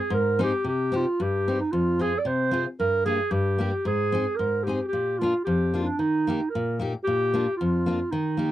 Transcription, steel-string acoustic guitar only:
0.10 0.51 G#2 medium
0.39 0.51 C4 medium
0.39 0.51 D#4 medium
0.39 0.52 G#4 medium
0.64 1.05 C3 medium
0.92 1.04 C4 medium
0.92 1.04 D#4 medium
0.92 1.05 G4 medium
1.20 1.60 G2 medium
1.48 1.59 C4 medium
1.48 1.59 D#4 medium
1.48 1.59 G4 medium
1.73 2.13 F2 medium
1.99 2.11 C4 medium
1.99 2.12 F4 medium
1.99 2.12 G#4 soft
2.25 2.65 C3 medium
2.51 2.64 C4 medium
2.51 2.64 F4 medium
2.51 2.65 G#4 medium
2.80 3.19 G2 medium
3.06 3.18 A#3 medium
3.06 3.18 D4 soft
3.06 3.18 G4 soft
3.31 3.71 G2 medium
3.58 3.71 A#3 medium
3.58 3.71 D4 soft
3.58 3.72 G4 medium
3.85 4.25 G#2 medium
4.12 4.24 C4 medium
4.12 4.25 D#4 medium
4.12 4.25 G#4 medium
4.39 4.79 G#2 medium
4.67 4.79 C4 medium
4.67 4.78 D#4 soft
4.67 4.79 G#4 medium
4.93 5.33 A#2 medium
5.21 5.33 A#3 medium
5.21 5.33 D4 medium
5.21 5.33 F4 medium
5.47 5.87 F2 medium
5.74 5.86 A#3 medium
5.74 5.86 D4 soft
5.74 5.86 F4 medium
5.99 6.40 D#3 medium
6.27 6.39 A#3 medium
6.27 6.40 D#4 medium
6.27 6.40 G4 medium
6.55 6.94 A#2 medium
6.80 6.92 A#3 medium
6.80 6.92 D#4 medium
6.80 6.93 G4 medium
7.07 7.47 A#2 medium
7.33 7.45 A#3 medium
7.33 7.46 D4 medium
7.33 7.45 F4 medium
7.61 8.00 F2 medium
7.86 7.98 A#3 medium
7.86 7.98 D4 medium
7.86 7.99 F4 medium
8.12 8.52 D#3 medium
8.37 8.51 A#3 soft
8.37 8.51 D#4 soft
8.37 8.52 G4 medium

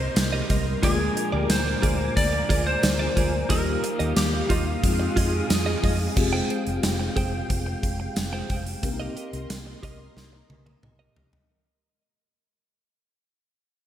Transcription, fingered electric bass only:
0.17 0.41 C2 loud
0.50 0.74 C2 medium
0.83 1.07 D2 loud
1.33 1.45 D2 loud
1.50 1.74 D2 loud
1.83 2.07 D2 loud
2.17 2.41 D2 loud
2.50 2.74 D2 loud
2.83 3.07 D2 loud
3.17 3.41 D2 loud
3.50 3.74 D#2 loud
4.00 4.12 D#2 loud
4.17 4.41 D#2 loud
4.50 4.74 D#2 loud
4.84 5.07 F2 medium
5.17 5.41 F2 loud
5.50 5.74 F2 loud
5.84 6.08 F2 medium
6.17 6.41 F1 loud
6.67 6.79 F1 loud
6.83 7.07 F1 loud
7.16 7.41 F1 loud
7.50 7.74 F1 loud
7.83 8.07 F1 medium
8.17 8.41 F1 loud
8.50 8.74 F1 loud
8.83 9.07 C2 loud
9.33 9.45 C2 loud
9.50 9.74 C2 loud
9.83 10.07 C2 loud
10.16 10.40 C2 loud
10.50 10.74 C2 loud
10.83 11.07 C2 loud
11.16 11.40 C2 medium

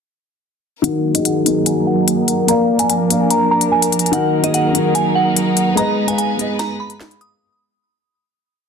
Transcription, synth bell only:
0.84 1.13 F#5 loud
1.15 1.24 D#5 medium
1.25 1.64 F#5 medium
1.67 1.84 G#5 medium
1.87 2.45 F#5 medium
2.49 2.78 A#5 medium
2.79 2.88 G#5 medium
2.90 3.28 G#5 medium
3.31 3.48 A#5 medium
3.51 3.69 A#5 medium
3.72 4.10 G#5 medium
4.13 4.42 F#5 medium
4.44 4.53 D#5 medium
4.54 4.93 F#5 medium
4.95 5.12 G#5 medium
5.15 5.73 F#5 medium
5.77 6.06 A#5 loud
6.08 6.17 G#5 medium
6.18 6.57 G#5 medium
6.59 6.77 A#5 medium
6.80 7.19 B5 medium
7.21 7.38 D#6 medium

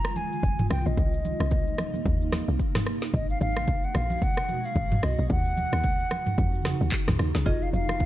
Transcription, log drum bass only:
0.43 0.67 F1 loud
0.70 0.84 C2 loud
0.86 0.96 A#1 loud
0.97 1.34 C2 loud
1.40 1.73 C2 loud
2.06 2.42 D#2 loud
2.48 2.58 C2 medium
3.14 3.37 G#1 loud
3.41 3.87 G#1 loud
3.95 4.18 A#1 loud
4.76 4.99 G#1 loud
5.03 5.16 C2 loud
5.19 5.28 B1 medium
5.30 5.67 D#2 loud
5.73 6.06 D#2 loud
6.38 6.75 F2 loud
6.81 6.91 D#2 medium
7.08 7.18 C#2 medium
7.19 7.33 D#2 loud
7.35 7.45 C#2 loud
7.46 7.69 F1 loud
7.73 8.05 F1 loud

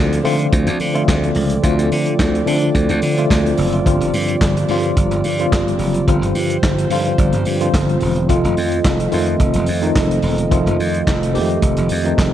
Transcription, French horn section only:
0.00 3.82 C4 medium
0.00 12.34 F4 medium
0.00 3.82 A4 medium
0.00 6.03 D5 medium
3.86 12.34 C4 medium
3.86 8.26 G4 medium
6.08 8.28 C5 medium
8.29 12.34 A4 medium
8.29 12.34 D#5 medium

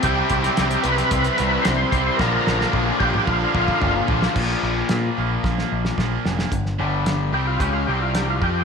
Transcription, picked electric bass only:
0.04 0.21 C2 medium
0.31 0.48 C2 loud
0.59 0.76 C2 loud
0.85 1.01 C2 medium
1.12 1.28 C2 medium
1.40 1.56 C2 medium
1.67 1.83 C2 loud
1.92 2.09 C2 medium
2.20 2.36 A#1 loud
2.47 2.64 A#1 loud
2.73 2.90 A#1 medium
3.00 3.17 A#1 medium
3.28 3.44 A#1 medium
3.55 3.71 A#1 medium
3.83 3.99 G1 medium
4.10 4.26 A#1 medium
4.36 4.54 A#1 medium
4.63 4.81 A#1 medium
4.91 5.09 A#2 medium
5.18 5.36 A#1 medium
5.44 5.62 A#1 medium
5.72 5.90 A#1 medium
5.98 6.17 A#1 medium
6.26 6.44 F1 medium
6.52 6.77 G1 medium
6.79 7.30 G1 medium
7.33 7.58 C2 medium
7.60 7.86 C#2 medium
7.88 8.39 C2 medium
8.41 8.64 F2 medium

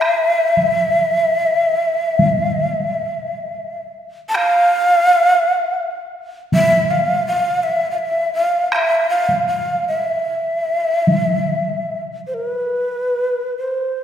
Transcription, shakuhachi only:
0.00 3.82 E5 medium
4.29 4.37 A5 medium
4.36 6.00 F5 loud
6.54 6.92 E5 loud
6.91 7.26 F5 medium
7.27 7.65 F5 medium
7.63 7.91 E5 medium
7.91 8.00 F5 medium
7.98 8.33 E5 medium
8.34 8.69 F5 medium
8.72 8.77 F5 medium
8.76 9.07 E5 medium
9.10 9.46 F5 medium
9.48 9.85 F5 medium
9.88 12.03 E5 medium
12.27 12.35 C5 soft
12.34 12.47 A#4 medium
12.47 13.57 B4 medium
13.58 14.04 C5 medium

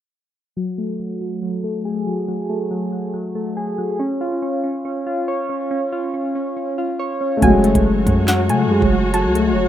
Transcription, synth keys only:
0.57 0.98 F#3 loud
0.78 1.63 A3 medium
0.99 1.20 F#3 medium
1.21 1.41 F#3 medium
1.42 2.05 F#3 medium
1.64 2.48 A3 medium
1.85 3.14 G#4 medium
2.07 2.27 F#3 medium
2.28 2.70 F#3 medium
2.49 3.34 A3 medium
2.71 2.91 F#3 medium
2.92 3.13 F#3 medium
3.14 3.77 F#3 medium
3.35 4.00 A3 medium
3.57 4.00 G#4 medium
3.78 4.00 F#3 medium
3.99 4.41 C#4 medium
4.21 5.05 F4 medium
4.42 4.62 C#4 medium
4.64 4.84 C#4 medium
4.85 5.48 C#4 medium
5.07 5.91 F4 medium
5.28 6.57 C#5 medium
5.49 5.70 C#4 medium
5.71 6.13 C#4 medium
5.92 6.77 F4 medium
6.14 6.34 C#4 medium
6.35 6.55 C#4 medium
6.57 7.20 C#4 medium
6.78 7.42 F4 medium
6.99 7.42 C#5 medium
7.21 7.42 C#4 medium
7.42 7.84 F#3 loud
7.64 8.48 A3 medium
7.85 8.06 F#3 medium
8.07 8.27 F#3 medium
8.28 8.91 F#3 medium
8.50 9.34 A3 medium
8.71 9.68 G#3 medium
8.92 9.13 F#3 medium
9.14 9.55 F#3 loud
9.35 9.68 A3 medium
9.57 9.68 F#3 medium

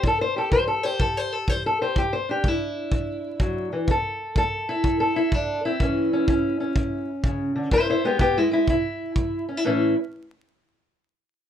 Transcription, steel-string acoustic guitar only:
0.04 0.49 A2 medium
0.04 0.21 A4 medium
0.21 0.37 C5 medium
0.36 0.83 G4 soft
0.36 0.52 A4 medium
0.52 0.96 E3 medium
0.52 0.67 C5 medium
0.68 0.83 A4 medium
0.83 1.80 G4 soft
0.83 1.01 C5 medium
1.01 1.45 E3 medium
1.01 1.17 A4 medium
1.17 1.33 C5 medium
1.33 1.49 A4 medium
1.48 1.93 E3 medium
1.48 1.65 C5 medium
1.66 1.81 A4 medium
1.81 1.94 G4 soft
1.81 1.97 C5 medium
1.97 2.41 E3 medium
1.97 2.13 G4 medium
2.13 2.28 C5 medium
2.29 3.86 D4 soft
2.29 2.48 G4 medium
2.44 2.88 G#3 medium
2.44 3.89 E4 loud
2.92 3.36 B2 medium
3.40 3.72 F#3 medium
3.73 3.88 E3 medium
3.89 4.33 D3 medium
3.89 4.36 A4 medium
4.37 4.81 F#3 medium
4.37 4.99 A4 loud
4.69 5.15 E4 medium
4.84 5.28 A2 medium
5.00 5.64 A4 medium
5.16 5.34 E4 medium
5.33 5.77 F#3 medium
5.33 5.65 D4 medium
5.65 5.78 C4 soft
5.65 7.08 E4 medium
5.81 6.25 A2 medium
5.81 6.28 E3 medium
5.81 6.12 C#4 soft
6.13 6.28 C#4 soft
6.28 6.72 E3 medium
6.28 6.59 C#4 medium
6.60 7.70 C#4 soft
6.76 7.21 A2 medium
7.25 7.55 C#3 medium
7.56 7.71 D3 medium
7.72 8.16 E3 medium
7.72 7.88 E4 medium
7.72 7.88 C5 medium
7.90 8.04 E4 medium
7.90 8.05 C5 medium
8.04 8.19 G#3 soft
8.04 8.19 B3 medium
8.04 8.20 G4 medium
8.20 8.36 G#3 medium
8.20 8.36 B3 medium
8.20 8.38 G4 medium
8.37 8.50 G#3 medium
8.37 8.52 E4 medium
8.51 8.67 G#3 medium
8.51 8.68 E4 medium
8.68 9.13 B2 medium
8.68 9.48 E4 medium
9.17 9.61 G#3 medium
9.48 9.57 C#4 soft
9.57 9.64 E4 soft
9.65 9.93 A2 medium
9.65 9.93 E3 medium
9.65 9.94 C#4 medium
9.65 9.95 E4 medium

